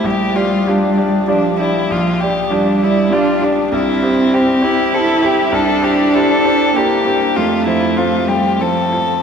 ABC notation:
X:1
M:3/4
L:1/8
Q:1/4=99
K:Gdor
V:1 name="Upright piano"
B,,, [Gd] [FGd] [Gd] [FGd] [Gd] | B,,, [Gd] [FGd] [Gd] [FGd] [Gd] | C,, [Gc] [EGc] [Gc] [EGc] [Gc] | C,, [Gc] [EGc] [Gc] [EGc] [Gc] |
F,, [F,c] [CFc] [Fc] [CFc] [Fc] |]
V:2 name="Violin"
G F D2 D E | F G D E F D | E2 G2 A G | A G A2 G2 |
F E F G A2 |]
V:3 name="Cello" clef=bass
G,4 F,2 | F,2 G,2 D z | C3 E3 | D4 B,2 |
A,3 G, F,2 |]